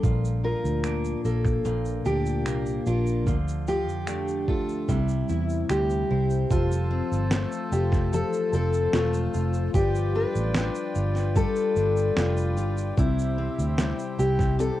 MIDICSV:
0, 0, Header, 1, 7, 480
1, 0, Start_track
1, 0, Key_signature, -1, "major"
1, 0, Tempo, 808625
1, 19, Time_signature, 4, 2, 24, 8
1, 8785, End_track
2, 0, Start_track
2, 0, Title_t, "Harmonium"
2, 0, Program_c, 0, 20
2, 3861, Note_on_c, 0, 81, 90
2, 3863, Note_on_c, 0, 65, 81
2, 3863, Note_on_c, 0, 69, 75
2, 3864, Note_on_c, 0, 72, 80
2, 5763, Note_off_c, 0, 81, 0
2, 5765, Note_off_c, 0, 69, 0
2, 5765, Note_off_c, 0, 72, 0
2, 5785, Note_on_c, 0, 74, 82
2, 5786, Note_on_c, 0, 71, 80
2, 5787, Note_on_c, 0, 79, 96
2, 7680, Note_off_c, 0, 65, 0
2, 7685, Note_off_c, 0, 74, 0
2, 7686, Note_off_c, 0, 71, 0
2, 7700, Note_on_c, 0, 67, 83
2, 7702, Note_on_c, 0, 72, 85
2, 7704, Note_on_c, 0, 64, 83
2, 8785, Note_off_c, 0, 64, 0
2, 8785, Note_off_c, 0, 67, 0
2, 8785, Note_off_c, 0, 72, 0
2, 8785, Note_off_c, 0, 79, 0
2, 8785, End_track
3, 0, Start_track
3, 0, Title_t, "Steel-string acoustic guitar"
3, 0, Program_c, 1, 25
3, 264, Note_on_c, 1, 70, 92
3, 739, Note_off_c, 1, 70, 0
3, 741, Note_on_c, 1, 69, 78
3, 964, Note_off_c, 1, 69, 0
3, 1222, Note_on_c, 1, 67, 104
3, 1702, Note_off_c, 1, 67, 0
3, 1704, Note_on_c, 1, 65, 81
3, 1926, Note_off_c, 1, 65, 0
3, 2187, Note_on_c, 1, 67, 106
3, 2641, Note_off_c, 1, 67, 0
3, 2665, Note_on_c, 1, 65, 80
3, 2904, Note_on_c, 1, 64, 79
3, 2911, Note_off_c, 1, 65, 0
3, 3385, Note_on_c, 1, 67, 93
3, 3600, Note_off_c, 1, 64, 0
3, 3867, Note_on_c, 1, 65, 98
3, 3878, Note_off_c, 1, 67, 0
3, 4586, Note_on_c, 1, 67, 90
3, 4607, Note_off_c, 1, 65, 0
3, 4808, Note_off_c, 1, 67, 0
3, 4833, Note_on_c, 1, 69, 95
3, 5052, Note_off_c, 1, 69, 0
3, 5073, Note_on_c, 1, 69, 97
3, 5308, Note_on_c, 1, 65, 92
3, 5315, Note_off_c, 1, 69, 0
3, 5787, Note_on_c, 1, 67, 103
3, 5800, Note_off_c, 1, 65, 0
3, 6009, Note_off_c, 1, 67, 0
3, 6029, Note_on_c, 1, 71, 100
3, 6745, Note_off_c, 1, 71, 0
3, 6748, Note_on_c, 1, 69, 97
3, 7228, Note_on_c, 1, 65, 96
3, 7240, Note_off_c, 1, 69, 0
3, 7707, Note_off_c, 1, 65, 0
3, 7709, Note_on_c, 1, 64, 106
3, 8423, Note_on_c, 1, 67, 85
3, 8448, Note_off_c, 1, 64, 0
3, 8647, Note_off_c, 1, 67, 0
3, 8666, Note_on_c, 1, 69, 103
3, 8785, Note_off_c, 1, 69, 0
3, 8785, End_track
4, 0, Start_track
4, 0, Title_t, "Steel-string acoustic guitar"
4, 0, Program_c, 2, 25
4, 0, Note_on_c, 2, 55, 64
4, 0, Note_on_c, 2, 67, 55
4, 0, Note_on_c, 2, 70, 68
4, 20, Note_on_c, 2, 46, 77
4, 69, Note_off_c, 2, 67, 0
4, 70, Note_off_c, 2, 55, 0
4, 260, Note_on_c, 2, 65, 54
4, 498, Note_on_c, 2, 58, 65
4, 972, Note_off_c, 2, 46, 0
4, 979, Note_on_c, 2, 46, 86
4, 1218, Note_off_c, 2, 65, 0
4, 1220, Note_on_c, 2, 65, 58
4, 1454, Note_off_c, 2, 58, 0
4, 1461, Note_on_c, 2, 58, 67
4, 1702, Note_off_c, 2, 70, 0
4, 1704, Note_on_c, 2, 70, 63
4, 1947, Note_on_c, 2, 50, 71
4, 1989, Note_off_c, 2, 46, 0
4, 1989, Note_off_c, 2, 58, 0
4, 1989, Note_off_c, 2, 65, 0
4, 1991, Note_off_c, 2, 70, 0
4, 2183, Note_on_c, 2, 65, 58
4, 2420, Note_on_c, 2, 57, 70
4, 2664, Note_on_c, 2, 69, 59
4, 2901, Note_on_c, 2, 48, 90
4, 2949, Note_off_c, 2, 57, 0
4, 2951, Note_off_c, 2, 65, 0
4, 2951, Note_off_c, 2, 69, 0
4, 2953, Note_off_c, 2, 50, 0
4, 3141, Note_on_c, 2, 64, 59
4, 3382, Note_on_c, 2, 55, 69
4, 3624, Note_on_c, 2, 72, 65
4, 3863, Note_on_c, 2, 53, 76
4, 3910, Note_off_c, 2, 48, 0
4, 3910, Note_off_c, 2, 55, 0
4, 3910, Note_off_c, 2, 64, 0
4, 4099, Note_on_c, 2, 60, 65
4, 4341, Note_on_c, 2, 57, 71
4, 4583, Note_on_c, 2, 65, 56
4, 4822, Note_off_c, 2, 53, 0
4, 4825, Note_on_c, 2, 53, 85
4, 5058, Note_off_c, 2, 60, 0
4, 5065, Note_on_c, 2, 60, 61
4, 5296, Note_off_c, 2, 57, 0
4, 5303, Note_on_c, 2, 57, 70
4, 5541, Note_off_c, 2, 65, 0
4, 5544, Note_on_c, 2, 65, 60
4, 5701, Note_off_c, 2, 72, 0
4, 5781, Note_off_c, 2, 57, 0
4, 5783, Note_on_c, 2, 55, 79
4, 5832, Note_off_c, 2, 60, 0
4, 6024, Note_on_c, 2, 62, 63
4, 6257, Note_off_c, 2, 62, 0
4, 6264, Note_on_c, 2, 62, 74
4, 6498, Note_off_c, 2, 65, 0
4, 6501, Note_on_c, 2, 65, 57
4, 6741, Note_off_c, 2, 55, 0
4, 6743, Note_on_c, 2, 55, 93
4, 6761, Note_off_c, 2, 53, 0
4, 6977, Note_off_c, 2, 62, 0
4, 6984, Note_on_c, 2, 62, 60
4, 7216, Note_off_c, 2, 62, 0
4, 7223, Note_on_c, 2, 62, 69
4, 7457, Note_off_c, 2, 65, 0
4, 7464, Note_on_c, 2, 65, 59
4, 7700, Note_on_c, 2, 48, 85
4, 7752, Note_off_c, 2, 62, 0
4, 7752, Note_off_c, 2, 65, 0
4, 7943, Note_on_c, 2, 60, 64
4, 8178, Note_off_c, 2, 55, 0
4, 8180, Note_on_c, 2, 55, 72
4, 8421, Note_on_c, 2, 64, 57
4, 8653, Note_off_c, 2, 48, 0
4, 8660, Note_on_c, 2, 48, 93
4, 8785, Note_off_c, 2, 48, 0
4, 8785, Note_off_c, 2, 55, 0
4, 8785, Note_off_c, 2, 60, 0
4, 8785, Note_off_c, 2, 64, 0
4, 8785, End_track
5, 0, Start_track
5, 0, Title_t, "Clean electric guitar"
5, 0, Program_c, 3, 27
5, 0, Note_on_c, 3, 58, 62
5, 0, Note_on_c, 3, 62, 60
5, 0, Note_on_c, 3, 67, 61
5, 22, Note_on_c, 3, 53, 76
5, 69, Note_off_c, 3, 67, 0
5, 259, Note_off_c, 3, 53, 0
5, 261, Note_on_c, 3, 53, 59
5, 501, Note_off_c, 3, 62, 0
5, 503, Note_on_c, 3, 62, 55
5, 741, Note_off_c, 3, 58, 0
5, 743, Note_on_c, 3, 58, 56
5, 980, Note_off_c, 3, 53, 0
5, 982, Note_on_c, 3, 53, 68
5, 1217, Note_off_c, 3, 62, 0
5, 1220, Note_on_c, 3, 62, 63
5, 1456, Note_off_c, 3, 58, 0
5, 1463, Note_on_c, 3, 58, 62
5, 1701, Note_off_c, 3, 62, 0
5, 1704, Note_on_c, 3, 62, 60
5, 1936, Note_off_c, 3, 53, 0
5, 1943, Note_on_c, 3, 53, 77
5, 1990, Note_off_c, 3, 58, 0
5, 1991, Note_off_c, 3, 62, 0
5, 2177, Note_off_c, 3, 53, 0
5, 2185, Note_on_c, 3, 53, 64
5, 2424, Note_on_c, 3, 62, 64
5, 2661, Note_on_c, 3, 57, 55
5, 2900, Note_off_c, 3, 53, 0
5, 2902, Note_on_c, 3, 55, 72
5, 2950, Note_off_c, 3, 57, 0
5, 2951, Note_off_c, 3, 62, 0
5, 3142, Note_on_c, 3, 64, 61
5, 3386, Note_on_c, 3, 60, 59
5, 3619, Note_off_c, 3, 64, 0
5, 3626, Note_on_c, 3, 64, 57
5, 3911, Note_off_c, 3, 55, 0
5, 3913, Note_off_c, 3, 64, 0
5, 4209, Note_off_c, 3, 60, 0
5, 8785, End_track
6, 0, Start_track
6, 0, Title_t, "Fingered electric bass"
6, 0, Program_c, 4, 33
6, 20, Note_on_c, 4, 34, 89
6, 315, Note_off_c, 4, 34, 0
6, 380, Note_on_c, 4, 38, 77
6, 675, Note_off_c, 4, 38, 0
6, 740, Note_on_c, 4, 34, 92
6, 937, Note_off_c, 4, 34, 0
6, 981, Note_on_c, 4, 34, 95
6, 1178, Note_off_c, 4, 34, 0
6, 1220, Note_on_c, 4, 38, 90
6, 1458, Note_off_c, 4, 38, 0
6, 1458, Note_on_c, 4, 36, 99
6, 1656, Note_off_c, 4, 36, 0
6, 1701, Note_on_c, 4, 34, 89
6, 1941, Note_off_c, 4, 34, 0
6, 1941, Note_on_c, 4, 38, 90
6, 2300, Note_off_c, 4, 38, 0
6, 2300, Note_on_c, 4, 41, 83
6, 2660, Note_off_c, 4, 41, 0
6, 2660, Note_on_c, 4, 38, 85
6, 2858, Note_off_c, 4, 38, 0
6, 2899, Note_on_c, 4, 36, 101
6, 3098, Note_off_c, 4, 36, 0
6, 3143, Note_on_c, 4, 40, 95
6, 3339, Note_off_c, 4, 40, 0
6, 3381, Note_on_c, 4, 38, 88
6, 3579, Note_off_c, 4, 38, 0
6, 3625, Note_on_c, 4, 36, 91
6, 3821, Note_off_c, 4, 36, 0
6, 3863, Note_on_c, 4, 29, 111
6, 4158, Note_off_c, 4, 29, 0
6, 4224, Note_on_c, 4, 31, 79
6, 4421, Note_off_c, 4, 31, 0
6, 4582, Note_on_c, 4, 29, 106
6, 4878, Note_off_c, 4, 29, 0
6, 5063, Note_on_c, 4, 29, 105
6, 5260, Note_off_c, 4, 29, 0
6, 5304, Note_on_c, 4, 28, 97
6, 5500, Note_off_c, 4, 28, 0
6, 5548, Note_on_c, 4, 29, 96
6, 5743, Note_off_c, 4, 29, 0
6, 5783, Note_on_c, 4, 31, 102
6, 6079, Note_off_c, 4, 31, 0
6, 6146, Note_on_c, 4, 33, 91
6, 6342, Note_off_c, 4, 33, 0
6, 6504, Note_on_c, 4, 31, 102
6, 6799, Note_off_c, 4, 31, 0
6, 6982, Note_on_c, 4, 31, 108
6, 7180, Note_off_c, 4, 31, 0
6, 7221, Note_on_c, 4, 29, 108
6, 7466, Note_off_c, 4, 29, 0
6, 7466, Note_on_c, 4, 31, 91
6, 7662, Note_off_c, 4, 31, 0
6, 7704, Note_on_c, 4, 36, 102
6, 7999, Note_off_c, 4, 36, 0
6, 8065, Note_on_c, 4, 38, 75
6, 8261, Note_off_c, 4, 38, 0
6, 8423, Note_on_c, 4, 36, 99
6, 8718, Note_off_c, 4, 36, 0
6, 8785, End_track
7, 0, Start_track
7, 0, Title_t, "Drums"
7, 20, Note_on_c, 9, 36, 104
7, 21, Note_on_c, 9, 82, 65
7, 80, Note_off_c, 9, 36, 0
7, 80, Note_off_c, 9, 82, 0
7, 146, Note_on_c, 9, 82, 52
7, 205, Note_off_c, 9, 82, 0
7, 386, Note_on_c, 9, 82, 45
7, 445, Note_off_c, 9, 82, 0
7, 497, Note_on_c, 9, 26, 100
7, 498, Note_on_c, 9, 82, 71
7, 556, Note_off_c, 9, 26, 0
7, 558, Note_off_c, 9, 82, 0
7, 620, Note_on_c, 9, 82, 47
7, 679, Note_off_c, 9, 82, 0
7, 740, Note_on_c, 9, 82, 56
7, 799, Note_off_c, 9, 82, 0
7, 858, Note_on_c, 9, 26, 34
7, 861, Note_on_c, 9, 36, 83
7, 863, Note_on_c, 9, 82, 40
7, 917, Note_off_c, 9, 26, 0
7, 921, Note_off_c, 9, 36, 0
7, 923, Note_off_c, 9, 82, 0
7, 978, Note_on_c, 9, 82, 60
7, 1038, Note_off_c, 9, 82, 0
7, 1098, Note_on_c, 9, 82, 49
7, 1158, Note_off_c, 9, 82, 0
7, 1218, Note_on_c, 9, 82, 47
7, 1277, Note_off_c, 9, 82, 0
7, 1339, Note_on_c, 9, 82, 51
7, 1398, Note_off_c, 9, 82, 0
7, 1459, Note_on_c, 9, 26, 101
7, 1463, Note_on_c, 9, 82, 60
7, 1519, Note_off_c, 9, 26, 0
7, 1523, Note_off_c, 9, 82, 0
7, 1578, Note_on_c, 9, 82, 52
7, 1638, Note_off_c, 9, 82, 0
7, 1698, Note_on_c, 9, 82, 59
7, 1757, Note_off_c, 9, 82, 0
7, 1819, Note_on_c, 9, 82, 52
7, 1879, Note_off_c, 9, 82, 0
7, 1940, Note_on_c, 9, 82, 64
7, 1941, Note_on_c, 9, 36, 113
7, 2000, Note_off_c, 9, 36, 0
7, 2000, Note_off_c, 9, 82, 0
7, 2066, Note_on_c, 9, 82, 50
7, 2125, Note_off_c, 9, 82, 0
7, 2180, Note_on_c, 9, 82, 52
7, 2239, Note_off_c, 9, 82, 0
7, 2308, Note_on_c, 9, 82, 45
7, 2367, Note_off_c, 9, 82, 0
7, 2417, Note_on_c, 9, 26, 104
7, 2419, Note_on_c, 9, 82, 75
7, 2477, Note_off_c, 9, 26, 0
7, 2478, Note_off_c, 9, 82, 0
7, 2540, Note_on_c, 9, 82, 51
7, 2599, Note_off_c, 9, 82, 0
7, 2660, Note_on_c, 9, 36, 87
7, 2719, Note_off_c, 9, 36, 0
7, 2783, Note_on_c, 9, 82, 41
7, 2842, Note_off_c, 9, 82, 0
7, 2901, Note_on_c, 9, 36, 86
7, 2901, Note_on_c, 9, 82, 64
7, 2960, Note_off_c, 9, 36, 0
7, 2960, Note_off_c, 9, 82, 0
7, 3017, Note_on_c, 9, 82, 49
7, 3076, Note_off_c, 9, 82, 0
7, 3138, Note_on_c, 9, 82, 44
7, 3197, Note_off_c, 9, 82, 0
7, 3260, Note_on_c, 9, 82, 49
7, 3320, Note_off_c, 9, 82, 0
7, 3381, Note_on_c, 9, 26, 103
7, 3385, Note_on_c, 9, 82, 61
7, 3440, Note_off_c, 9, 26, 0
7, 3444, Note_off_c, 9, 82, 0
7, 3501, Note_on_c, 9, 82, 46
7, 3560, Note_off_c, 9, 82, 0
7, 3740, Note_on_c, 9, 82, 53
7, 3800, Note_off_c, 9, 82, 0
7, 3863, Note_on_c, 9, 36, 115
7, 3863, Note_on_c, 9, 82, 79
7, 3922, Note_off_c, 9, 36, 0
7, 3922, Note_off_c, 9, 82, 0
7, 3986, Note_on_c, 9, 82, 55
7, 4046, Note_off_c, 9, 82, 0
7, 4228, Note_on_c, 9, 82, 52
7, 4288, Note_off_c, 9, 82, 0
7, 4339, Note_on_c, 9, 38, 114
7, 4340, Note_on_c, 9, 82, 77
7, 4398, Note_off_c, 9, 38, 0
7, 4400, Note_off_c, 9, 82, 0
7, 4463, Note_on_c, 9, 82, 54
7, 4522, Note_off_c, 9, 82, 0
7, 4584, Note_on_c, 9, 82, 62
7, 4643, Note_off_c, 9, 82, 0
7, 4701, Note_on_c, 9, 38, 35
7, 4705, Note_on_c, 9, 36, 84
7, 4707, Note_on_c, 9, 82, 47
7, 4760, Note_off_c, 9, 38, 0
7, 4764, Note_off_c, 9, 36, 0
7, 4766, Note_off_c, 9, 82, 0
7, 4825, Note_on_c, 9, 82, 65
7, 4885, Note_off_c, 9, 82, 0
7, 4944, Note_on_c, 9, 82, 51
7, 5003, Note_off_c, 9, 82, 0
7, 5062, Note_on_c, 9, 82, 45
7, 5121, Note_off_c, 9, 82, 0
7, 5183, Note_on_c, 9, 82, 55
7, 5242, Note_off_c, 9, 82, 0
7, 5302, Note_on_c, 9, 38, 113
7, 5306, Note_on_c, 9, 82, 62
7, 5362, Note_off_c, 9, 38, 0
7, 5366, Note_off_c, 9, 82, 0
7, 5421, Note_on_c, 9, 82, 56
7, 5480, Note_off_c, 9, 82, 0
7, 5542, Note_on_c, 9, 82, 62
7, 5601, Note_off_c, 9, 82, 0
7, 5659, Note_on_c, 9, 82, 55
7, 5719, Note_off_c, 9, 82, 0
7, 5782, Note_on_c, 9, 82, 75
7, 5783, Note_on_c, 9, 36, 116
7, 5842, Note_off_c, 9, 36, 0
7, 5842, Note_off_c, 9, 82, 0
7, 5906, Note_on_c, 9, 82, 55
7, 5966, Note_off_c, 9, 82, 0
7, 6145, Note_on_c, 9, 82, 51
7, 6205, Note_off_c, 9, 82, 0
7, 6260, Note_on_c, 9, 38, 111
7, 6261, Note_on_c, 9, 82, 75
7, 6319, Note_off_c, 9, 38, 0
7, 6320, Note_off_c, 9, 82, 0
7, 6381, Note_on_c, 9, 82, 57
7, 6440, Note_off_c, 9, 82, 0
7, 6500, Note_on_c, 9, 82, 61
7, 6560, Note_off_c, 9, 82, 0
7, 6619, Note_on_c, 9, 38, 38
7, 6625, Note_on_c, 9, 82, 45
7, 6678, Note_off_c, 9, 38, 0
7, 6684, Note_off_c, 9, 82, 0
7, 6742, Note_on_c, 9, 36, 95
7, 6742, Note_on_c, 9, 82, 69
7, 6801, Note_off_c, 9, 36, 0
7, 6801, Note_off_c, 9, 82, 0
7, 6860, Note_on_c, 9, 82, 54
7, 6919, Note_off_c, 9, 82, 0
7, 6980, Note_on_c, 9, 82, 46
7, 7040, Note_off_c, 9, 82, 0
7, 7103, Note_on_c, 9, 82, 52
7, 7162, Note_off_c, 9, 82, 0
7, 7222, Note_on_c, 9, 38, 109
7, 7226, Note_on_c, 9, 82, 64
7, 7282, Note_off_c, 9, 38, 0
7, 7286, Note_off_c, 9, 82, 0
7, 7343, Note_on_c, 9, 82, 52
7, 7402, Note_off_c, 9, 82, 0
7, 7462, Note_on_c, 9, 82, 59
7, 7521, Note_off_c, 9, 82, 0
7, 7582, Note_on_c, 9, 82, 54
7, 7641, Note_off_c, 9, 82, 0
7, 7703, Note_on_c, 9, 36, 121
7, 7704, Note_on_c, 9, 82, 71
7, 7762, Note_off_c, 9, 36, 0
7, 7763, Note_off_c, 9, 82, 0
7, 7829, Note_on_c, 9, 82, 58
7, 7888, Note_off_c, 9, 82, 0
7, 8068, Note_on_c, 9, 82, 53
7, 8127, Note_off_c, 9, 82, 0
7, 8181, Note_on_c, 9, 38, 107
7, 8182, Note_on_c, 9, 82, 74
7, 8240, Note_off_c, 9, 38, 0
7, 8241, Note_off_c, 9, 82, 0
7, 8304, Note_on_c, 9, 82, 56
7, 8364, Note_off_c, 9, 82, 0
7, 8424, Note_on_c, 9, 82, 58
7, 8484, Note_off_c, 9, 82, 0
7, 8542, Note_on_c, 9, 38, 34
7, 8544, Note_on_c, 9, 36, 95
7, 8548, Note_on_c, 9, 82, 46
7, 8601, Note_off_c, 9, 38, 0
7, 8603, Note_off_c, 9, 36, 0
7, 8607, Note_off_c, 9, 82, 0
7, 8664, Note_on_c, 9, 82, 66
7, 8723, Note_off_c, 9, 82, 0
7, 8785, End_track
0, 0, End_of_file